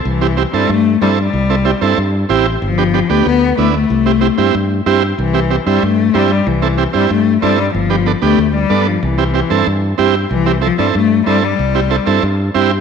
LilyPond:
<<
  \new Staff \with { instrumentName = "Transistor combo organ" } { \time 4/4 \key c \major \tempo 4 = 187 r8 <c' e' g'>8 <c' e' g'>8 <c' e' a'>8 r4 <c' e' a'>8 r8 | r8 <c' e' a'>8 <c' e' g'>8 <c' e' a'>8 r4 <c' e' g'>8 r8 | r8 <b d' g'>8 <b d' g'>8 <b d' g'>8 r4 <b d' e'>8 r8 | r8 <c' e' g'>8 <c' e' g'>8 <c' e' g'>8 r4 <c' e' g'>8 r8 |
r8 <c' e' g'>8 <c' e' g'>8 <c' e' g'>8 r4 <c' e' g'>8 r8 | r8 <c' e' a'>8 <c' e' g'>8 <c' e' g'>8 r4 <c' e' a'>8 r8 | r8 <b d' g'>8 <b d' a'>8 <b d' g'>8 r4 <b d' a'>8 r8 | r8 <c' e' g'>8 <c' e' g'>8 <c' e' a'>8 r4 <c' e' g'>8 r8 |
r8 <c' e' g'>8 <c' e' a'>8 <c' e' a'>8 r4 <c' e' a'>8 r8 | r8 <c' e' g'>8 <c' e' a'>8 <c' e' a'>8 r4 <c' e' g'>8 r8 | }
  \new Staff \with { instrumentName = "Cello" } { \clef bass \time 4/4 \key c \major e4. g8 a4 g8 g8~ | g2~ g8 r4. | f4. a8 b4 a8 a8~ | a2~ a8 r4. |
e4. g8 a4 g8 g8 | e4. g8 a4 g8 g8 | f4. a4 g4 f8 | e2. r4 |
e4 f8 g8 a4 g8 g8~ | g2~ g8 r4. | }
  \new Staff \with { instrumentName = "Fingered electric bass" } { \clef bass \time 4/4 \key c \major c,4. g,8 g,4 g,4 | c,4. g,8 g,4 a,,4 | g,,4. d,8 d,4 d,4 | c,4. g,8 g,4 g,4 |
c,4. g,8 g,4 g,4 | c,4. g,8 g,4 g,4 | g,,4. d,8 d,4 g,4 | c,4. g,8 g,4 g,4 |
c,4. g,8 g,4 g,4 | c,4. g,8 g,4 g,4 | }
>>